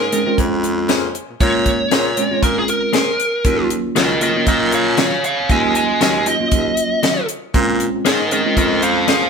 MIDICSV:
0, 0, Header, 1, 6, 480
1, 0, Start_track
1, 0, Key_signature, -5, "minor"
1, 0, Tempo, 511945
1, 1318, Time_signature, 4, 2, 24, 8
1, 8717, End_track
2, 0, Start_track
2, 0, Title_t, "Lead electric guitar"
2, 0, Program_c, 0, 29
2, 0, Note_on_c, 0, 70, 100
2, 333, Note_off_c, 0, 70, 0
2, 1324, Note_on_c, 0, 73, 99
2, 2252, Note_off_c, 0, 73, 0
2, 2284, Note_on_c, 0, 70, 75
2, 2410, Note_off_c, 0, 70, 0
2, 2427, Note_on_c, 0, 68, 71
2, 2523, Note_off_c, 0, 68, 0
2, 2530, Note_on_c, 0, 70, 90
2, 3455, Note_off_c, 0, 70, 0
2, 3723, Note_on_c, 0, 70, 80
2, 3730, Note_on_c, 0, 75, 87
2, 3948, Note_off_c, 0, 70, 0
2, 3951, Note_off_c, 0, 75, 0
2, 3958, Note_on_c, 0, 70, 73
2, 3965, Note_on_c, 0, 75, 85
2, 4182, Note_off_c, 0, 70, 0
2, 4193, Note_off_c, 0, 75, 0
2, 4201, Note_on_c, 0, 70, 73
2, 4208, Note_on_c, 0, 75, 92
2, 4423, Note_off_c, 0, 70, 0
2, 4436, Note_off_c, 0, 75, 0
2, 4444, Note_on_c, 0, 73, 68
2, 4451, Note_on_c, 0, 77, 75
2, 4664, Note_off_c, 0, 73, 0
2, 4677, Note_off_c, 0, 77, 0
2, 4689, Note_on_c, 0, 73, 72
2, 4696, Note_on_c, 0, 77, 70
2, 4907, Note_off_c, 0, 73, 0
2, 4918, Note_off_c, 0, 77, 0
2, 4927, Note_on_c, 0, 73, 68
2, 4932, Note_on_c, 0, 77, 81
2, 5146, Note_off_c, 0, 73, 0
2, 5158, Note_off_c, 0, 77, 0
2, 5164, Note_on_c, 0, 75, 79
2, 5173, Note_on_c, 0, 80, 98
2, 5384, Note_off_c, 0, 75, 0
2, 5396, Note_off_c, 0, 80, 0
2, 5403, Note_on_c, 0, 75, 81
2, 5407, Note_on_c, 0, 80, 86
2, 5624, Note_off_c, 0, 75, 0
2, 5635, Note_off_c, 0, 80, 0
2, 5646, Note_on_c, 0, 75, 76
2, 5655, Note_on_c, 0, 80, 79
2, 5866, Note_off_c, 0, 75, 0
2, 5877, Note_off_c, 0, 80, 0
2, 5881, Note_on_c, 0, 75, 101
2, 6810, Note_off_c, 0, 75, 0
2, 7565, Note_on_c, 0, 70, 81
2, 7570, Note_on_c, 0, 75, 93
2, 7790, Note_off_c, 0, 70, 0
2, 7796, Note_off_c, 0, 75, 0
2, 7801, Note_on_c, 0, 70, 86
2, 7807, Note_on_c, 0, 75, 100
2, 8023, Note_off_c, 0, 70, 0
2, 8035, Note_off_c, 0, 75, 0
2, 8041, Note_on_c, 0, 70, 85
2, 8047, Note_on_c, 0, 75, 95
2, 8263, Note_off_c, 0, 70, 0
2, 8276, Note_off_c, 0, 75, 0
2, 8278, Note_on_c, 0, 72, 76
2, 8284, Note_on_c, 0, 77, 84
2, 8501, Note_off_c, 0, 72, 0
2, 8514, Note_off_c, 0, 77, 0
2, 8522, Note_on_c, 0, 72, 91
2, 8528, Note_on_c, 0, 77, 102
2, 8717, Note_off_c, 0, 72, 0
2, 8717, Note_off_c, 0, 77, 0
2, 8717, End_track
3, 0, Start_track
3, 0, Title_t, "Clean electric guitar"
3, 0, Program_c, 1, 27
3, 835, Note_on_c, 1, 58, 74
3, 839, Note_on_c, 1, 61, 78
3, 844, Note_on_c, 1, 68, 74
3, 848, Note_on_c, 1, 72, 86
3, 991, Note_off_c, 1, 58, 0
3, 993, Note_off_c, 1, 61, 0
3, 995, Note_off_c, 1, 68, 0
3, 998, Note_off_c, 1, 72, 0
3, 1796, Note_on_c, 1, 58, 81
3, 1800, Note_on_c, 1, 61, 79
3, 1804, Note_on_c, 1, 68, 84
3, 1810, Note_on_c, 1, 72, 92
3, 1951, Note_off_c, 1, 58, 0
3, 1953, Note_off_c, 1, 61, 0
3, 1955, Note_off_c, 1, 68, 0
3, 1958, Note_off_c, 1, 72, 0
3, 2746, Note_on_c, 1, 58, 71
3, 2752, Note_on_c, 1, 61, 69
3, 2755, Note_on_c, 1, 68, 75
3, 2760, Note_on_c, 1, 72, 79
3, 2906, Note_off_c, 1, 58, 0
3, 2909, Note_off_c, 1, 61, 0
3, 2911, Note_off_c, 1, 68, 0
3, 2913, Note_off_c, 1, 72, 0
3, 3708, Note_on_c, 1, 51, 78
3, 3713, Note_on_c, 1, 54, 90
3, 3718, Note_on_c, 1, 61, 87
3, 3723, Note_on_c, 1, 65, 89
3, 3867, Note_off_c, 1, 51, 0
3, 3869, Note_off_c, 1, 54, 0
3, 3872, Note_off_c, 1, 61, 0
3, 3874, Note_off_c, 1, 65, 0
3, 4667, Note_on_c, 1, 51, 75
3, 4674, Note_on_c, 1, 54, 63
3, 4677, Note_on_c, 1, 61, 80
3, 4680, Note_on_c, 1, 65, 78
3, 4826, Note_off_c, 1, 51, 0
3, 4830, Note_off_c, 1, 54, 0
3, 4831, Note_off_c, 1, 61, 0
3, 4833, Note_off_c, 1, 65, 0
3, 5633, Note_on_c, 1, 51, 75
3, 5637, Note_on_c, 1, 54, 80
3, 5641, Note_on_c, 1, 61, 85
3, 5644, Note_on_c, 1, 65, 80
3, 5789, Note_off_c, 1, 51, 0
3, 5791, Note_off_c, 1, 54, 0
3, 5794, Note_off_c, 1, 61, 0
3, 5795, Note_off_c, 1, 65, 0
3, 6591, Note_on_c, 1, 51, 81
3, 6595, Note_on_c, 1, 54, 72
3, 6598, Note_on_c, 1, 61, 83
3, 6604, Note_on_c, 1, 65, 84
3, 6749, Note_off_c, 1, 51, 0
3, 6751, Note_off_c, 1, 54, 0
3, 6752, Note_off_c, 1, 61, 0
3, 6755, Note_off_c, 1, 65, 0
3, 7547, Note_on_c, 1, 58, 82
3, 7553, Note_on_c, 1, 61, 93
3, 7558, Note_on_c, 1, 68, 94
3, 7562, Note_on_c, 1, 72, 83
3, 7707, Note_off_c, 1, 58, 0
3, 7710, Note_off_c, 1, 61, 0
3, 7712, Note_off_c, 1, 68, 0
3, 7714, Note_off_c, 1, 72, 0
3, 8510, Note_on_c, 1, 58, 79
3, 8516, Note_on_c, 1, 61, 75
3, 8519, Note_on_c, 1, 68, 80
3, 8525, Note_on_c, 1, 72, 80
3, 8668, Note_off_c, 1, 58, 0
3, 8671, Note_off_c, 1, 61, 0
3, 8673, Note_off_c, 1, 68, 0
3, 8676, Note_off_c, 1, 72, 0
3, 8717, End_track
4, 0, Start_track
4, 0, Title_t, "Tine electric piano"
4, 0, Program_c, 2, 4
4, 118, Note_on_c, 2, 56, 83
4, 120, Note_on_c, 2, 60, 72
4, 122, Note_on_c, 2, 61, 65
4, 124, Note_on_c, 2, 68, 82
4, 206, Note_off_c, 2, 56, 0
4, 207, Note_off_c, 2, 60, 0
4, 208, Note_off_c, 2, 61, 0
4, 209, Note_off_c, 2, 68, 0
4, 250, Note_on_c, 2, 56, 81
4, 250, Note_on_c, 2, 60, 80
4, 252, Note_on_c, 2, 61, 68
4, 254, Note_on_c, 2, 65, 92
4, 876, Note_off_c, 2, 56, 0
4, 876, Note_off_c, 2, 60, 0
4, 877, Note_off_c, 2, 61, 0
4, 878, Note_off_c, 2, 65, 0
4, 1316, Note_on_c, 2, 56, 66
4, 1318, Note_on_c, 2, 61, 61
4, 1320, Note_on_c, 2, 58, 63
4, 1320, Note_on_c, 2, 65, 69
4, 1793, Note_off_c, 2, 56, 0
4, 1794, Note_off_c, 2, 61, 0
4, 1795, Note_off_c, 2, 58, 0
4, 1795, Note_off_c, 2, 65, 0
4, 2038, Note_on_c, 2, 56, 77
4, 2039, Note_on_c, 2, 60, 72
4, 2039, Note_on_c, 2, 61, 71
4, 2043, Note_on_c, 2, 65, 88
4, 2126, Note_off_c, 2, 56, 0
4, 2126, Note_off_c, 2, 60, 0
4, 2126, Note_off_c, 2, 61, 0
4, 2128, Note_off_c, 2, 65, 0
4, 2167, Note_on_c, 2, 56, 65
4, 2167, Note_on_c, 2, 61, 58
4, 2168, Note_on_c, 2, 60, 58
4, 2169, Note_on_c, 2, 65, 70
4, 2794, Note_off_c, 2, 56, 0
4, 2794, Note_off_c, 2, 60, 0
4, 2794, Note_off_c, 2, 61, 0
4, 2795, Note_off_c, 2, 65, 0
4, 3237, Note_on_c, 2, 54, 77
4, 3237, Note_on_c, 2, 58, 73
4, 3240, Note_on_c, 2, 61, 74
4, 3243, Note_on_c, 2, 65, 85
4, 3713, Note_off_c, 2, 58, 0
4, 3714, Note_off_c, 2, 54, 0
4, 3715, Note_off_c, 2, 61, 0
4, 3717, Note_off_c, 2, 65, 0
4, 3949, Note_on_c, 2, 54, 64
4, 3951, Note_on_c, 2, 61, 56
4, 3953, Note_on_c, 2, 58, 60
4, 3955, Note_on_c, 2, 65, 73
4, 4041, Note_off_c, 2, 54, 0
4, 4042, Note_off_c, 2, 61, 0
4, 4043, Note_off_c, 2, 58, 0
4, 4044, Note_off_c, 2, 65, 0
4, 4085, Note_on_c, 2, 54, 67
4, 4091, Note_on_c, 2, 58, 64
4, 4092, Note_on_c, 2, 61, 62
4, 4092, Note_on_c, 2, 65, 77
4, 4713, Note_off_c, 2, 54, 0
4, 4716, Note_off_c, 2, 58, 0
4, 4717, Note_off_c, 2, 61, 0
4, 4717, Note_off_c, 2, 65, 0
4, 5151, Note_on_c, 2, 54, 71
4, 5153, Note_on_c, 2, 58, 68
4, 5155, Note_on_c, 2, 61, 70
4, 5157, Note_on_c, 2, 65, 82
4, 5630, Note_off_c, 2, 54, 0
4, 5631, Note_off_c, 2, 58, 0
4, 5633, Note_off_c, 2, 61, 0
4, 5633, Note_off_c, 2, 65, 0
4, 5869, Note_on_c, 2, 54, 72
4, 5870, Note_on_c, 2, 58, 59
4, 5872, Note_on_c, 2, 65, 68
4, 5875, Note_on_c, 2, 61, 59
4, 5961, Note_off_c, 2, 54, 0
4, 5961, Note_off_c, 2, 58, 0
4, 5962, Note_off_c, 2, 65, 0
4, 5964, Note_off_c, 2, 61, 0
4, 6003, Note_on_c, 2, 54, 72
4, 6004, Note_on_c, 2, 58, 61
4, 6006, Note_on_c, 2, 61, 60
4, 6008, Note_on_c, 2, 65, 76
4, 6632, Note_off_c, 2, 54, 0
4, 6632, Note_off_c, 2, 58, 0
4, 6634, Note_off_c, 2, 61, 0
4, 6635, Note_off_c, 2, 65, 0
4, 7072, Note_on_c, 2, 60, 75
4, 7073, Note_on_c, 2, 56, 77
4, 7075, Note_on_c, 2, 65, 96
4, 7076, Note_on_c, 2, 61, 76
4, 7551, Note_off_c, 2, 56, 0
4, 7551, Note_off_c, 2, 60, 0
4, 7552, Note_off_c, 2, 65, 0
4, 7553, Note_off_c, 2, 61, 0
4, 7799, Note_on_c, 2, 60, 68
4, 7800, Note_on_c, 2, 56, 66
4, 7800, Note_on_c, 2, 61, 64
4, 7804, Note_on_c, 2, 68, 69
4, 7886, Note_off_c, 2, 60, 0
4, 7887, Note_off_c, 2, 56, 0
4, 7887, Note_off_c, 2, 61, 0
4, 7888, Note_off_c, 2, 68, 0
4, 7926, Note_on_c, 2, 56, 75
4, 7927, Note_on_c, 2, 60, 65
4, 7931, Note_on_c, 2, 65, 77
4, 7932, Note_on_c, 2, 61, 67
4, 8554, Note_off_c, 2, 56, 0
4, 8554, Note_off_c, 2, 60, 0
4, 8556, Note_off_c, 2, 65, 0
4, 8557, Note_off_c, 2, 61, 0
4, 8717, End_track
5, 0, Start_track
5, 0, Title_t, "Baritone saxophone"
5, 0, Program_c, 3, 67
5, 0, Note_on_c, 3, 44, 79
5, 273, Note_off_c, 3, 44, 0
5, 359, Note_on_c, 3, 41, 96
5, 1054, Note_off_c, 3, 41, 0
5, 1212, Note_on_c, 3, 46, 32
5, 1265, Note_off_c, 3, 46, 0
5, 1318, Note_on_c, 3, 46, 100
5, 1709, Note_off_c, 3, 46, 0
5, 1796, Note_on_c, 3, 46, 81
5, 2101, Note_off_c, 3, 46, 0
5, 2172, Note_on_c, 3, 46, 34
5, 2226, Note_off_c, 3, 46, 0
5, 2273, Note_on_c, 3, 46, 81
5, 2471, Note_off_c, 3, 46, 0
5, 3234, Note_on_c, 3, 39, 91
5, 3539, Note_off_c, 3, 39, 0
5, 3610, Note_on_c, 3, 39, 33
5, 3664, Note_off_c, 3, 39, 0
5, 3715, Note_on_c, 3, 37, 86
5, 4107, Note_off_c, 3, 37, 0
5, 4192, Note_on_c, 3, 46, 99
5, 4889, Note_off_c, 3, 46, 0
5, 5051, Note_on_c, 3, 39, 35
5, 5104, Note_off_c, 3, 39, 0
5, 5153, Note_on_c, 3, 39, 95
5, 5546, Note_off_c, 3, 39, 0
5, 5631, Note_on_c, 3, 39, 93
5, 5937, Note_off_c, 3, 39, 0
5, 6012, Note_on_c, 3, 39, 31
5, 6065, Note_off_c, 3, 39, 0
5, 6114, Note_on_c, 3, 39, 88
5, 6311, Note_off_c, 3, 39, 0
5, 7073, Note_on_c, 3, 46, 97
5, 7378, Note_off_c, 3, 46, 0
5, 7454, Note_on_c, 3, 46, 32
5, 7507, Note_off_c, 3, 46, 0
5, 7559, Note_on_c, 3, 44, 88
5, 7949, Note_off_c, 3, 44, 0
5, 8034, Note_on_c, 3, 41, 96
5, 8717, Note_off_c, 3, 41, 0
5, 8717, End_track
6, 0, Start_track
6, 0, Title_t, "Drums"
6, 116, Note_on_c, 9, 42, 58
6, 210, Note_off_c, 9, 42, 0
6, 358, Note_on_c, 9, 36, 80
6, 360, Note_on_c, 9, 42, 77
6, 452, Note_off_c, 9, 36, 0
6, 453, Note_off_c, 9, 42, 0
6, 598, Note_on_c, 9, 42, 57
6, 692, Note_off_c, 9, 42, 0
6, 833, Note_on_c, 9, 42, 73
6, 843, Note_on_c, 9, 38, 101
6, 927, Note_off_c, 9, 42, 0
6, 937, Note_off_c, 9, 38, 0
6, 1077, Note_on_c, 9, 42, 54
6, 1171, Note_off_c, 9, 42, 0
6, 1318, Note_on_c, 9, 36, 103
6, 1318, Note_on_c, 9, 42, 77
6, 1411, Note_off_c, 9, 36, 0
6, 1412, Note_off_c, 9, 42, 0
6, 1555, Note_on_c, 9, 42, 64
6, 1556, Note_on_c, 9, 36, 77
6, 1649, Note_off_c, 9, 42, 0
6, 1650, Note_off_c, 9, 36, 0
6, 1794, Note_on_c, 9, 42, 70
6, 1804, Note_on_c, 9, 38, 101
6, 1888, Note_off_c, 9, 42, 0
6, 1897, Note_off_c, 9, 38, 0
6, 2035, Note_on_c, 9, 42, 58
6, 2128, Note_off_c, 9, 42, 0
6, 2274, Note_on_c, 9, 36, 84
6, 2277, Note_on_c, 9, 42, 92
6, 2368, Note_off_c, 9, 36, 0
6, 2371, Note_off_c, 9, 42, 0
6, 2514, Note_on_c, 9, 42, 64
6, 2608, Note_off_c, 9, 42, 0
6, 2751, Note_on_c, 9, 42, 78
6, 2760, Note_on_c, 9, 38, 95
6, 2844, Note_off_c, 9, 42, 0
6, 2854, Note_off_c, 9, 38, 0
6, 2997, Note_on_c, 9, 42, 64
6, 3091, Note_off_c, 9, 42, 0
6, 3232, Note_on_c, 9, 36, 97
6, 3232, Note_on_c, 9, 42, 81
6, 3325, Note_off_c, 9, 42, 0
6, 3326, Note_off_c, 9, 36, 0
6, 3473, Note_on_c, 9, 42, 67
6, 3567, Note_off_c, 9, 42, 0
6, 3713, Note_on_c, 9, 42, 82
6, 3723, Note_on_c, 9, 38, 95
6, 3807, Note_off_c, 9, 42, 0
6, 3817, Note_off_c, 9, 38, 0
6, 3949, Note_on_c, 9, 42, 64
6, 4043, Note_off_c, 9, 42, 0
6, 4188, Note_on_c, 9, 42, 79
6, 4190, Note_on_c, 9, 36, 87
6, 4282, Note_off_c, 9, 42, 0
6, 4283, Note_off_c, 9, 36, 0
6, 4427, Note_on_c, 9, 42, 59
6, 4521, Note_off_c, 9, 42, 0
6, 4664, Note_on_c, 9, 42, 75
6, 4674, Note_on_c, 9, 38, 103
6, 4758, Note_off_c, 9, 42, 0
6, 4768, Note_off_c, 9, 38, 0
6, 4914, Note_on_c, 9, 42, 54
6, 5008, Note_off_c, 9, 42, 0
6, 5152, Note_on_c, 9, 36, 97
6, 5154, Note_on_c, 9, 42, 69
6, 5246, Note_off_c, 9, 36, 0
6, 5248, Note_off_c, 9, 42, 0
6, 5392, Note_on_c, 9, 42, 58
6, 5486, Note_off_c, 9, 42, 0
6, 5636, Note_on_c, 9, 42, 75
6, 5645, Note_on_c, 9, 38, 98
6, 5729, Note_off_c, 9, 42, 0
6, 5739, Note_off_c, 9, 38, 0
6, 5871, Note_on_c, 9, 42, 62
6, 5965, Note_off_c, 9, 42, 0
6, 6109, Note_on_c, 9, 42, 84
6, 6111, Note_on_c, 9, 36, 89
6, 6202, Note_off_c, 9, 42, 0
6, 6205, Note_off_c, 9, 36, 0
6, 6348, Note_on_c, 9, 42, 67
6, 6442, Note_off_c, 9, 42, 0
6, 6592, Note_on_c, 9, 42, 82
6, 6602, Note_on_c, 9, 38, 102
6, 6686, Note_off_c, 9, 42, 0
6, 6695, Note_off_c, 9, 38, 0
6, 6832, Note_on_c, 9, 42, 69
6, 6925, Note_off_c, 9, 42, 0
6, 7073, Note_on_c, 9, 36, 103
6, 7073, Note_on_c, 9, 42, 77
6, 7166, Note_off_c, 9, 36, 0
6, 7166, Note_off_c, 9, 42, 0
6, 7313, Note_on_c, 9, 42, 71
6, 7407, Note_off_c, 9, 42, 0
6, 7554, Note_on_c, 9, 42, 84
6, 7563, Note_on_c, 9, 38, 102
6, 7648, Note_off_c, 9, 42, 0
6, 7657, Note_off_c, 9, 38, 0
6, 7794, Note_on_c, 9, 42, 62
6, 7888, Note_off_c, 9, 42, 0
6, 8033, Note_on_c, 9, 36, 83
6, 8034, Note_on_c, 9, 42, 86
6, 8127, Note_off_c, 9, 36, 0
6, 8128, Note_off_c, 9, 42, 0
6, 8274, Note_on_c, 9, 42, 60
6, 8368, Note_off_c, 9, 42, 0
6, 8512, Note_on_c, 9, 42, 79
6, 8522, Note_on_c, 9, 38, 101
6, 8606, Note_off_c, 9, 42, 0
6, 8616, Note_off_c, 9, 38, 0
6, 8717, End_track
0, 0, End_of_file